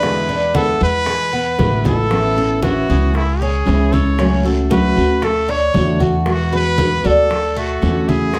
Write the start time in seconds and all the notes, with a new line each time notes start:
Already playing: E2 B4
0.02 B2 D3 G#3 B3 E4, high bongo, high conga, long guiro
0.28 G#3 B3 D4 E4, high bongo, high conga
0.54 B2 D3 G#3 B3 E4 A4, high bongo, high conga, short guiro
0.81 E2 G#3 B3 E4 B4, high bongo, high conga, short guiro
1.06 G#3, muted steel-string acoustic guitar stroke, high bongo, high conga, long guiro
1.33 B3, high bongo, high conga
1.58 A1 B2 D3 G#3 B3 E4, high bongo, high conga, short guiro
1.84 G#3 B3 E4 A4, low bongo, high conga, short guiro
2.10 E3 B3 C#4 E4, high bongo, high conga, long guiro
2.36 B3 C#4 E4 A4, high bongo, high conga
2.62 E3 B3 C#4 E4 F#4, high bongo, high conga, short guiro
2.87 C#2 B3 C#4 E4 G#4, high bongo, short guiro
3.13 E4, muted steel-string acoustic guitar stroke, high bongo, high conga, long guiro
3.41 C#4 G#4, high bongo, high conga
3.65 C#2 C#3 E3 G#3 C#4 E4, high bongo, low bongo, high conga, short guiro
3.92 G#3 C#4 E4 A4 C#5, high conga, short guiro
4.18 C#3 F#3 A3 C#4 F#4, high bongo, high conga, long guiro
4.44 A3 C#4 F#4 A4, high bongo, high conga
4.70 C#3 F#3 A3 C#4 F#4 B4, high bongo, high conga, short guiro
4.96 D2 A3 C#4 F#4, high bongo, high conga, short guiro
5.22 A3 A4, muted steel-string acoustic guitar stroke, high bongo, high conga, long guiro
5.48 D4 C#5, high bongo, high conga
5.74 E2 D3 A3 D4 F#4, high bongo, low bongo, high conga, short guiro
6.00 A3 D4 F#4, high conga, short guiro
6.25 B2 E3 G#3 B3 F#4, high bongo, high conga, long guiro
6.30 F#4
6.52 G#3 B3 F#4 B4, high bongo, high conga
6.56 B4
6.78 B2 E3 G#3 B3 F#4, high bongo, high conga, short guiro
7.04 D2 G#3 B3 D4 F#4 A4, high bongo, short guiro
7.29 muted steel-string acoustic guitar stroke, high bongo, high conga, long guiro
7.56 A3 F#4, high bongo, high conga
7.81 E2 D3 A3 C#4 F#4, high bongo, low bongo, high conga, short guiro
8.07 A3 C#4 E4 F#4 G#4, high conga, short guiro
8.33 B2 E3 G#3 B3 E4, high bongo, high conga, long guiro